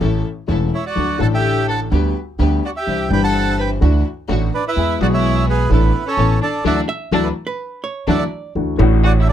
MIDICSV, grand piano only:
0, 0, Header, 1, 2, 480
1, 0, Start_track
1, 0, Key_signature, 2, "major"
1, 0, Tempo, 474684
1, 977, Time_signature, 4, 2, 24, 8
1, 9428, End_track
2, 0, Start_track
2, 0, Title_t, "Grand piano"
2, 0, Program_c, 0, 0
2, 7, Note_on_c, 0, 33, 65
2, 8, Note_on_c, 0, 52, 59
2, 9, Note_on_c, 0, 45, 66
2, 9, Note_on_c, 0, 57, 52
2, 10, Note_on_c, 0, 69, 58
2, 11, Note_on_c, 0, 61, 49
2, 211, Note_off_c, 0, 33, 0
2, 211, Note_off_c, 0, 52, 0
2, 212, Note_off_c, 0, 45, 0
2, 212, Note_off_c, 0, 57, 0
2, 212, Note_off_c, 0, 69, 0
2, 213, Note_off_c, 0, 61, 0
2, 480, Note_on_c, 0, 52, 59
2, 485, Note_on_c, 0, 28, 68
2, 485, Note_on_c, 0, 57, 53
2, 486, Note_on_c, 0, 40, 70
2, 486, Note_on_c, 0, 69, 62
2, 489, Note_on_c, 0, 61, 51
2, 690, Note_off_c, 0, 52, 0
2, 693, Note_off_c, 0, 28, 0
2, 693, Note_off_c, 0, 40, 0
2, 693, Note_off_c, 0, 57, 0
2, 693, Note_off_c, 0, 69, 0
2, 694, Note_off_c, 0, 61, 0
2, 967, Note_on_c, 0, 54, 38
2, 969, Note_on_c, 0, 57, 32
2, 969, Note_on_c, 0, 62, 34
2, 970, Note_on_c, 0, 69, 37
2, 971, Note_on_c, 0, 50, 49
2, 972, Note_on_c, 0, 38, 45
2, 1174, Note_off_c, 0, 54, 0
2, 1175, Note_off_c, 0, 57, 0
2, 1175, Note_off_c, 0, 62, 0
2, 1175, Note_off_c, 0, 69, 0
2, 1176, Note_off_c, 0, 38, 0
2, 1176, Note_off_c, 0, 50, 0
2, 1191, Note_on_c, 0, 50, 64
2, 1204, Note_on_c, 0, 57, 51
2, 1212, Note_on_c, 0, 45, 79
2, 1213, Note_on_c, 0, 33, 66
2, 1219, Note_on_c, 0, 62, 57
2, 1229, Note_on_c, 0, 69, 69
2, 1890, Note_off_c, 0, 50, 0
2, 1896, Note_off_c, 0, 57, 0
2, 1900, Note_off_c, 0, 33, 0
2, 1900, Note_off_c, 0, 45, 0
2, 1903, Note_off_c, 0, 62, 0
2, 1908, Note_off_c, 0, 69, 0
2, 1932, Note_on_c, 0, 50, 69
2, 1935, Note_on_c, 0, 55, 58
2, 1937, Note_on_c, 0, 38, 70
2, 1937, Note_on_c, 0, 59, 52
2, 1942, Note_on_c, 0, 67, 69
2, 2139, Note_off_c, 0, 50, 0
2, 2139, Note_off_c, 0, 55, 0
2, 2140, Note_off_c, 0, 38, 0
2, 2140, Note_off_c, 0, 59, 0
2, 2143, Note_off_c, 0, 67, 0
2, 2413, Note_on_c, 0, 50, 74
2, 2418, Note_on_c, 0, 59, 52
2, 2419, Note_on_c, 0, 55, 53
2, 2420, Note_on_c, 0, 38, 69
2, 2423, Note_on_c, 0, 67, 67
2, 2621, Note_off_c, 0, 50, 0
2, 2621, Note_off_c, 0, 59, 0
2, 2622, Note_off_c, 0, 38, 0
2, 2622, Note_off_c, 0, 55, 0
2, 2624, Note_off_c, 0, 67, 0
2, 2896, Note_on_c, 0, 60, 35
2, 2899, Note_on_c, 0, 48, 43
2, 2899, Note_on_c, 0, 52, 43
2, 2902, Note_on_c, 0, 36, 47
2, 2902, Note_on_c, 0, 67, 48
2, 2904, Note_on_c, 0, 62, 38
2, 3099, Note_off_c, 0, 60, 0
2, 3101, Note_off_c, 0, 48, 0
2, 3101, Note_off_c, 0, 52, 0
2, 3102, Note_off_c, 0, 36, 0
2, 3102, Note_off_c, 0, 67, 0
2, 3103, Note_off_c, 0, 62, 0
2, 3119, Note_on_c, 0, 52, 63
2, 3134, Note_on_c, 0, 60, 53
2, 3139, Note_on_c, 0, 43, 81
2, 3140, Note_on_c, 0, 31, 71
2, 3145, Note_on_c, 0, 62, 61
2, 3160, Note_on_c, 0, 67, 67
2, 3811, Note_off_c, 0, 52, 0
2, 3819, Note_off_c, 0, 60, 0
2, 3821, Note_off_c, 0, 43, 0
2, 3822, Note_off_c, 0, 31, 0
2, 3824, Note_off_c, 0, 62, 0
2, 3832, Note_off_c, 0, 67, 0
2, 3850, Note_on_c, 0, 52, 58
2, 3854, Note_on_c, 0, 50, 70
2, 3854, Note_on_c, 0, 57, 58
2, 3856, Note_on_c, 0, 62, 56
2, 3858, Note_on_c, 0, 38, 63
2, 3859, Note_on_c, 0, 66, 69
2, 4054, Note_off_c, 0, 52, 0
2, 4056, Note_off_c, 0, 57, 0
2, 4057, Note_off_c, 0, 50, 0
2, 4057, Note_off_c, 0, 62, 0
2, 4059, Note_off_c, 0, 38, 0
2, 4059, Note_off_c, 0, 66, 0
2, 4330, Note_on_c, 0, 52, 65
2, 4333, Note_on_c, 0, 33, 70
2, 4333, Note_on_c, 0, 45, 68
2, 4334, Note_on_c, 0, 62, 61
2, 4335, Note_on_c, 0, 66, 68
2, 4336, Note_on_c, 0, 57, 53
2, 4533, Note_off_c, 0, 52, 0
2, 4534, Note_off_c, 0, 33, 0
2, 4534, Note_off_c, 0, 45, 0
2, 4535, Note_off_c, 0, 62, 0
2, 4536, Note_off_c, 0, 57, 0
2, 4536, Note_off_c, 0, 66, 0
2, 4812, Note_on_c, 0, 52, 49
2, 4817, Note_on_c, 0, 56, 42
2, 4817, Note_on_c, 0, 59, 38
2, 4818, Note_on_c, 0, 40, 44
2, 4819, Note_on_c, 0, 68, 43
2, 5015, Note_off_c, 0, 40, 0
2, 5015, Note_off_c, 0, 52, 0
2, 5015, Note_off_c, 0, 56, 0
2, 5015, Note_off_c, 0, 59, 0
2, 5016, Note_off_c, 0, 68, 0
2, 5044, Note_on_c, 0, 52, 63
2, 5055, Note_on_c, 0, 56, 57
2, 5061, Note_on_c, 0, 47, 78
2, 5062, Note_on_c, 0, 35, 81
2, 5070, Note_on_c, 0, 59, 63
2, 5080, Note_on_c, 0, 68, 72
2, 5726, Note_off_c, 0, 52, 0
2, 5732, Note_off_c, 0, 56, 0
2, 5735, Note_off_c, 0, 35, 0
2, 5735, Note_off_c, 0, 47, 0
2, 5739, Note_off_c, 0, 59, 0
2, 5745, Note_off_c, 0, 68, 0
2, 5759, Note_on_c, 0, 52, 60
2, 5761, Note_on_c, 0, 33, 71
2, 5761, Note_on_c, 0, 57, 49
2, 5764, Note_on_c, 0, 45, 70
2, 5766, Note_on_c, 0, 69, 60
2, 5767, Note_on_c, 0, 62, 56
2, 5962, Note_off_c, 0, 52, 0
2, 5963, Note_off_c, 0, 33, 0
2, 5963, Note_off_c, 0, 57, 0
2, 5965, Note_off_c, 0, 45, 0
2, 5966, Note_off_c, 0, 62, 0
2, 5966, Note_off_c, 0, 69, 0
2, 6245, Note_on_c, 0, 52, 60
2, 6247, Note_on_c, 0, 33, 66
2, 6248, Note_on_c, 0, 61, 50
2, 6249, Note_on_c, 0, 45, 71
2, 6250, Note_on_c, 0, 59, 58
2, 6251, Note_on_c, 0, 69, 64
2, 6444, Note_off_c, 0, 52, 0
2, 6446, Note_off_c, 0, 33, 0
2, 6446, Note_off_c, 0, 45, 0
2, 6446, Note_off_c, 0, 61, 0
2, 6447, Note_off_c, 0, 59, 0
2, 6448, Note_off_c, 0, 69, 0
2, 6722, Note_on_c, 0, 57, 76
2, 6723, Note_on_c, 0, 52, 79
2, 6723, Note_on_c, 0, 54, 68
2, 6875, Note_off_c, 0, 57, 0
2, 6876, Note_off_c, 0, 52, 0
2, 6876, Note_off_c, 0, 54, 0
2, 7201, Note_on_c, 0, 54, 89
2, 7202, Note_on_c, 0, 52, 87
2, 7204, Note_on_c, 0, 57, 80
2, 7354, Note_off_c, 0, 54, 0
2, 7355, Note_off_c, 0, 52, 0
2, 7356, Note_off_c, 0, 57, 0
2, 8165, Note_on_c, 0, 52, 74
2, 8167, Note_on_c, 0, 54, 72
2, 8167, Note_on_c, 0, 57, 74
2, 8321, Note_off_c, 0, 52, 0
2, 8322, Note_off_c, 0, 54, 0
2, 8322, Note_off_c, 0, 57, 0
2, 8653, Note_on_c, 0, 52, 46
2, 8653, Note_on_c, 0, 57, 45
2, 8653, Note_on_c, 0, 62, 43
2, 8655, Note_on_c, 0, 50, 57
2, 8656, Note_on_c, 0, 38, 52
2, 8657, Note_on_c, 0, 66, 52
2, 8853, Note_off_c, 0, 52, 0
2, 8853, Note_off_c, 0, 57, 0
2, 8853, Note_off_c, 0, 62, 0
2, 8854, Note_off_c, 0, 50, 0
2, 8855, Note_off_c, 0, 38, 0
2, 8855, Note_off_c, 0, 66, 0
2, 8872, Note_on_c, 0, 52, 78
2, 8884, Note_on_c, 0, 57, 77
2, 8889, Note_on_c, 0, 45, 100
2, 8893, Note_on_c, 0, 33, 95
2, 8899, Note_on_c, 0, 62, 68
2, 8912, Note_on_c, 0, 66, 82
2, 9428, Note_off_c, 0, 33, 0
2, 9428, Note_off_c, 0, 45, 0
2, 9428, Note_off_c, 0, 52, 0
2, 9428, Note_off_c, 0, 57, 0
2, 9428, Note_off_c, 0, 62, 0
2, 9428, Note_off_c, 0, 66, 0
2, 9428, End_track
0, 0, End_of_file